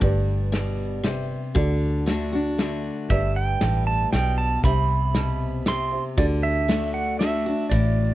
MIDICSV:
0, 0, Header, 1, 6, 480
1, 0, Start_track
1, 0, Key_signature, 1, "major"
1, 0, Tempo, 513259
1, 20, Time_signature, 3, 2, 24, 8
1, 7613, End_track
2, 0, Start_track
2, 0, Title_t, "Pedal steel guitar"
2, 0, Program_c, 0, 26
2, 2901, Note_on_c, 0, 76, 73
2, 3145, Note_on_c, 0, 79, 88
2, 3148, Note_off_c, 0, 76, 0
2, 3614, Note_off_c, 0, 79, 0
2, 3618, Note_on_c, 0, 81, 88
2, 3842, Note_off_c, 0, 81, 0
2, 3858, Note_on_c, 0, 79, 80
2, 4094, Note_on_c, 0, 81, 91
2, 4106, Note_off_c, 0, 79, 0
2, 4341, Note_off_c, 0, 81, 0
2, 4345, Note_on_c, 0, 83, 89
2, 5310, Note_off_c, 0, 83, 0
2, 5314, Note_on_c, 0, 84, 84
2, 5642, Note_off_c, 0, 84, 0
2, 5781, Note_on_c, 0, 74, 83
2, 5845, Note_off_c, 0, 74, 0
2, 6016, Note_on_c, 0, 76, 91
2, 6486, Note_off_c, 0, 76, 0
2, 6490, Note_on_c, 0, 78, 82
2, 6723, Note_off_c, 0, 78, 0
2, 6726, Note_on_c, 0, 76, 83
2, 7177, Note_off_c, 0, 76, 0
2, 7197, Note_on_c, 0, 74, 72
2, 7613, Note_off_c, 0, 74, 0
2, 7613, End_track
3, 0, Start_track
3, 0, Title_t, "Upright piano"
3, 0, Program_c, 1, 0
3, 17, Note_on_c, 1, 67, 66
3, 29, Note_on_c, 1, 71, 65
3, 29, Note_on_c, 1, 74, 83
3, 1431, Note_off_c, 1, 67, 0
3, 1436, Note_off_c, 1, 71, 0
3, 1437, Note_off_c, 1, 74, 0
3, 1451, Note_on_c, 1, 66, 74
3, 1461, Note_on_c, 1, 69, 72
3, 1468, Note_on_c, 1, 74, 76
3, 2867, Note_off_c, 1, 66, 0
3, 2872, Note_off_c, 1, 69, 0
3, 2876, Note_off_c, 1, 74, 0
3, 2891, Note_on_c, 1, 67, 59
3, 2902, Note_on_c, 1, 71, 53
3, 2909, Note_on_c, 1, 74, 66
3, 4306, Note_off_c, 1, 67, 0
3, 4312, Note_off_c, 1, 71, 0
3, 4315, Note_off_c, 1, 74, 0
3, 4347, Note_on_c, 1, 67, 66
3, 4356, Note_on_c, 1, 72, 56
3, 4356, Note_on_c, 1, 76, 69
3, 5518, Note_off_c, 1, 67, 0
3, 5521, Note_off_c, 1, 72, 0
3, 5523, Note_off_c, 1, 76, 0
3, 5535, Note_on_c, 1, 72, 40
3, 5536, Note_on_c, 1, 67, 48
3, 5540, Note_on_c, 1, 76, 50
3, 5770, Note_on_c, 1, 69, 58
3, 5772, Note_on_c, 1, 66, 70
3, 5777, Note_off_c, 1, 67, 0
3, 5777, Note_off_c, 1, 72, 0
3, 5777, Note_on_c, 1, 74, 68
3, 5779, Note_off_c, 1, 76, 0
3, 7613, Note_off_c, 1, 66, 0
3, 7613, Note_off_c, 1, 69, 0
3, 7613, Note_off_c, 1, 74, 0
3, 7613, End_track
4, 0, Start_track
4, 0, Title_t, "Steel-string acoustic guitar"
4, 0, Program_c, 2, 25
4, 10, Note_on_c, 2, 43, 79
4, 489, Note_on_c, 2, 47, 76
4, 928, Note_off_c, 2, 43, 0
4, 951, Note_off_c, 2, 47, 0
4, 968, Note_on_c, 2, 48, 84
4, 1430, Note_off_c, 2, 48, 0
4, 1447, Note_on_c, 2, 50, 84
4, 1916, Note_off_c, 2, 50, 0
4, 1927, Note_on_c, 2, 50, 62
4, 1934, Note_on_c, 2, 57, 51
4, 1940, Note_on_c, 2, 62, 63
4, 1947, Note_on_c, 2, 66, 60
4, 2164, Note_off_c, 2, 50, 0
4, 2165, Note_off_c, 2, 66, 0
4, 2168, Note_off_c, 2, 57, 0
4, 2171, Note_off_c, 2, 62, 0
4, 2176, Note_on_c, 2, 66, 55
4, 2197, Note_on_c, 2, 62, 51
4, 2409, Note_off_c, 2, 66, 0
4, 2416, Note_on_c, 2, 50, 54
4, 2419, Note_off_c, 2, 62, 0
4, 2422, Note_on_c, 2, 57, 64
4, 2432, Note_on_c, 2, 62, 52
4, 2435, Note_on_c, 2, 66, 59
4, 2874, Note_off_c, 2, 50, 0
4, 2877, Note_off_c, 2, 57, 0
4, 2882, Note_off_c, 2, 62, 0
4, 2884, Note_off_c, 2, 66, 0
4, 2900, Note_on_c, 2, 43, 78
4, 3379, Note_on_c, 2, 45, 81
4, 3812, Note_off_c, 2, 43, 0
4, 3836, Note_off_c, 2, 45, 0
4, 3868, Note_on_c, 2, 47, 87
4, 4320, Note_off_c, 2, 47, 0
4, 4346, Note_on_c, 2, 48, 77
4, 4819, Note_on_c, 2, 47, 80
4, 5254, Note_off_c, 2, 48, 0
4, 5275, Note_off_c, 2, 47, 0
4, 5301, Note_on_c, 2, 48, 95
4, 5756, Note_off_c, 2, 48, 0
4, 5775, Note_on_c, 2, 50, 93
4, 6237, Note_off_c, 2, 50, 0
4, 6248, Note_on_c, 2, 50, 52
4, 6254, Note_on_c, 2, 57, 58
4, 6264, Note_on_c, 2, 62, 62
4, 6274, Note_on_c, 2, 66, 60
4, 6708, Note_off_c, 2, 50, 0
4, 6711, Note_off_c, 2, 57, 0
4, 6716, Note_off_c, 2, 62, 0
4, 6721, Note_off_c, 2, 66, 0
4, 6730, Note_on_c, 2, 50, 63
4, 6739, Note_on_c, 2, 57, 58
4, 6745, Note_on_c, 2, 62, 65
4, 6753, Note_on_c, 2, 66, 66
4, 6964, Note_off_c, 2, 50, 0
4, 6964, Note_off_c, 2, 66, 0
4, 6968, Note_off_c, 2, 57, 0
4, 6971, Note_off_c, 2, 62, 0
4, 6976, Note_on_c, 2, 66, 62
4, 7000, Note_on_c, 2, 62, 52
4, 7206, Note_off_c, 2, 66, 0
4, 7213, Note_on_c, 2, 45, 87
4, 7219, Note_off_c, 2, 62, 0
4, 7613, Note_off_c, 2, 45, 0
4, 7613, End_track
5, 0, Start_track
5, 0, Title_t, "Fingered electric bass"
5, 0, Program_c, 3, 33
5, 16, Note_on_c, 3, 31, 80
5, 1266, Note_off_c, 3, 31, 0
5, 1459, Note_on_c, 3, 38, 81
5, 2708, Note_off_c, 3, 38, 0
5, 2901, Note_on_c, 3, 31, 90
5, 3317, Note_off_c, 3, 31, 0
5, 3385, Note_on_c, 3, 33, 81
5, 3791, Note_off_c, 3, 33, 0
5, 3865, Note_on_c, 3, 35, 84
5, 4271, Note_off_c, 3, 35, 0
5, 4339, Note_on_c, 3, 36, 89
5, 5587, Note_off_c, 3, 36, 0
5, 5779, Note_on_c, 3, 38, 83
5, 7026, Note_off_c, 3, 38, 0
5, 7214, Note_on_c, 3, 33, 80
5, 7613, Note_off_c, 3, 33, 0
5, 7613, End_track
6, 0, Start_track
6, 0, Title_t, "Drums"
6, 14, Note_on_c, 9, 51, 62
6, 17, Note_on_c, 9, 36, 116
6, 108, Note_off_c, 9, 51, 0
6, 110, Note_off_c, 9, 36, 0
6, 501, Note_on_c, 9, 38, 79
6, 501, Note_on_c, 9, 51, 57
6, 595, Note_off_c, 9, 38, 0
6, 595, Note_off_c, 9, 51, 0
6, 976, Note_on_c, 9, 38, 74
6, 976, Note_on_c, 9, 51, 52
6, 1069, Note_off_c, 9, 38, 0
6, 1069, Note_off_c, 9, 51, 0
6, 1455, Note_on_c, 9, 51, 66
6, 1457, Note_on_c, 9, 36, 107
6, 1549, Note_off_c, 9, 51, 0
6, 1550, Note_off_c, 9, 36, 0
6, 1940, Note_on_c, 9, 38, 84
6, 1940, Note_on_c, 9, 51, 61
6, 2034, Note_off_c, 9, 38, 0
6, 2034, Note_off_c, 9, 51, 0
6, 2421, Note_on_c, 9, 38, 78
6, 2421, Note_on_c, 9, 51, 54
6, 2515, Note_off_c, 9, 38, 0
6, 2515, Note_off_c, 9, 51, 0
6, 2898, Note_on_c, 9, 51, 64
6, 2900, Note_on_c, 9, 36, 102
6, 2991, Note_off_c, 9, 51, 0
6, 2993, Note_off_c, 9, 36, 0
6, 3376, Note_on_c, 9, 38, 85
6, 3376, Note_on_c, 9, 51, 64
6, 3469, Note_off_c, 9, 38, 0
6, 3469, Note_off_c, 9, 51, 0
6, 3858, Note_on_c, 9, 38, 73
6, 3858, Note_on_c, 9, 51, 56
6, 3952, Note_off_c, 9, 38, 0
6, 3952, Note_off_c, 9, 51, 0
6, 4334, Note_on_c, 9, 51, 66
6, 4337, Note_on_c, 9, 36, 116
6, 4427, Note_off_c, 9, 51, 0
6, 4431, Note_off_c, 9, 36, 0
6, 4813, Note_on_c, 9, 38, 83
6, 4813, Note_on_c, 9, 51, 60
6, 4906, Note_off_c, 9, 38, 0
6, 4906, Note_off_c, 9, 51, 0
6, 5294, Note_on_c, 9, 38, 75
6, 5294, Note_on_c, 9, 51, 56
6, 5387, Note_off_c, 9, 38, 0
6, 5387, Note_off_c, 9, 51, 0
6, 5774, Note_on_c, 9, 51, 65
6, 5777, Note_on_c, 9, 36, 113
6, 5868, Note_off_c, 9, 51, 0
6, 5871, Note_off_c, 9, 36, 0
6, 6259, Note_on_c, 9, 38, 83
6, 6259, Note_on_c, 9, 51, 57
6, 6352, Note_off_c, 9, 38, 0
6, 6352, Note_off_c, 9, 51, 0
6, 6740, Note_on_c, 9, 38, 81
6, 6740, Note_on_c, 9, 51, 61
6, 6833, Note_off_c, 9, 38, 0
6, 6833, Note_off_c, 9, 51, 0
6, 7212, Note_on_c, 9, 51, 70
6, 7216, Note_on_c, 9, 36, 110
6, 7306, Note_off_c, 9, 51, 0
6, 7309, Note_off_c, 9, 36, 0
6, 7613, End_track
0, 0, End_of_file